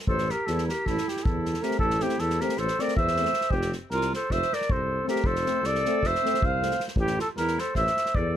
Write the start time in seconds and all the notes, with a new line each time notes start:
0.07 A1 A4 C5, kick
0.18 snare
0.29 G4 A#4, snare
0.46 E2 A4, snare
0.51 E4
0.58 snare
0.67 G4 A#4, snare
0.85 A1 E4 A4, kick, snare
0.97 snare
1.08 E4 G4, snare
1.16 snare
1.24 E2 E4 A4, kick
1.45 snare
1.54 snare
1.62 A3 C4 G4 A#4, snare
1.71 snare
1.79 A1 E4 A4, kick
1.90 snare
1.99 A3 C4 E4 G4, snare
2.09 snare
2.18 E2 E4 A4, snare
2.30 snare
2.40 A3 C4 G4 A#4, snare
2.49 snare
2.57 A1 A4 C5, snare
2.68 snare
2.79 A3 C4 A#4 D5, snare
2.88 snare
2.97 E2 C5 E5, kick
3.07 snare
3.16 A3 C4, snare
3.25 snare
3.33 snare
3.41 snare
3.51 F1 G4, kick
3.55 C4
3.61 snare
3.72 snare
3.90 C2 F4 A#4, snare
4.01 snare
4.13 A4 C5, snare
4.30 F1 C5 E5, kick, snare
4.42 snare
4.53 A#4 D5, snare
4.61 snare
4.70 C2 A4 C5, kick
5.05 A3 C4 A#4, snare
5.09 G4
5.16 snare
5.24 F1 A4 C5, kick
5.35 snare
5.44 A3 C4, snare
5.62 C2 A4 D5, snare
5.75 snare
5.84 A3 C4, snare
6.01 F1, kick, snare
6.06 C5 E5
6.15 snare
6.23 A3 C4, snare
6.34 snare
6.41 C2 C5, kick
6.46 F5
6.61 A3 C4, snare
6.71 snare
6.80 snare
6.88 snare
6.96 A1 E4, kick
7.01 G4
7.07 snare
7.18 F4 A4, snare
7.36 E2 E4 A#4, snare
7.47 snare
7.58 A4 C5, snare
7.75 A1 C5 E5, kick, snare
7.87 snare
7.97 snare
8.06 snare
8.15 E2 A4 D5, kick